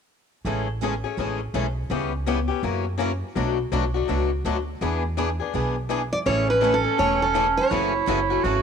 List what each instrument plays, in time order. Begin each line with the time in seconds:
0.45 upright bass A1, steel-string acoustic guitar C#3 E3 G#3 A3 C#4 E4 G#4 A4
0.82 steel-string acoustic guitar C#3 E3 G#3 A3 C#4 E4 G#4 A4
1.04 steel-string acoustic guitar A3 C#4 G#4
1.17 upright bass A1, steel-string acoustic guitar C#3 E3 G#3 A3 C#4 E4 G#4 A4
1.54 upright bass B1, steel-string acoustic guitar C#3 E3 G#3 A3 C#4 E4 G#4 A4
1.90 upright bass C#2, steel-string acoustic guitar C#3 E3 G3 B3 C#4 E4 G4 B4
2.26 steel-string acoustic guitar C#3 E3 G3 B3 C#4 E4 G4 B4
2.48 steel-string acoustic guitar B3 C#4 G4
2.63 upright bass F#2, steel-string acoustic guitar C#3 E3 F#3 A#3 C#4 E4 F#4 A#4
2.98 steel-string acoustic guitar C#3 E3 F#3 A#3 C#4 E4 F#4 A#4
3.35 upright bass B1, steel-string acoustic guitar B2 F#3 A3 D4 F#4 B4
3.72 upright bass B1, steel-string acoustic guitar B2 F#3 A3 D4 F#4 B4
3.94 steel-string acoustic guitar A3 D4 F#4
4.08 upright bass C#2, steel-string acoustic guitar B2 F#3 A3 D4 F#4 B4
4.44 upright bass D2, steel-string acoustic guitar B2 F#3 A3 D4 F#4 B4
4.81 upright bass E2, steel-string acoustic guitar E3 B3 D4 G#4 B4
5.17 steel-string acoustic guitar E3 B3 D4 G#4 B4
5.40 steel-string acoustic guitar B3 D4 G#4
5.53 upright bass B1, steel-string acoustic guitar E3 B3 D4 G#4 B4
5.89 steel-string acoustic guitar E3 B3 D4 G#4 B4
6.13 steel-string acoustic guitar D5
6.26 upright bass A1, steel-string acoustic guitar C#3 E3 A3 C#4 E4 A4 C#5, clarinet C#4
6.50 steel-string acoustic guitar B4
6.61 steel-string acoustic guitar C#3 E3 A3 C#4 E4 A4
6.74 steel-string acoustic guitar A4
6.84 steel-string acoustic guitar A3 C#4 A4
6.98 upright bass E1, steel-string acoustic guitar C#3 E3 A3 C#4 E4 A4 C#5
7.22 steel-string acoustic guitar A4
7.34 steel-string acoustic guitar C#3 E3 A3 C#4 E4 A4
7.57 steel-string acoustic guitar C#5
7.70 upright bass F#1, steel-string acoustic guitar C#3 E3 F#3 A3 C#4 E4 F#4 A4, clarinet E4
8.06 upright bass F#1, steel-string acoustic guitar C#3 E3 F#3 A3 C#4 E4 F#4 A4
8.30 steel-string acoustic guitar A3 C#4 F#4
8.43 upright bass G#1, steel-string acoustic guitar C#3 E3 F#3 A3 C#4 E4 F#4 A4, clarinet F#4